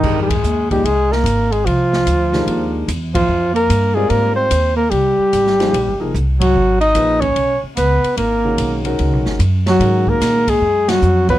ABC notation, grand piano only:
X:1
M:4/4
L:1/8
Q:"Swing" 1/4=147
K:Ablyd
V:1 name="Grand piano"
[E,A,DGB] z2 [F,B,EAe] z4 | z3 [E,A,DGB]3 z2 | z3 [G,CFBd]3 z2 | z3 [F,B,EAc] z [F,B,EAB] z2 |
z2 [F,B,EA_c] z4 z | z [E,A,_D_GB]2 [E,A,DGB]3 z2 | [E,A,_D_GB]3 z4 [_G,_CF_c_d] |]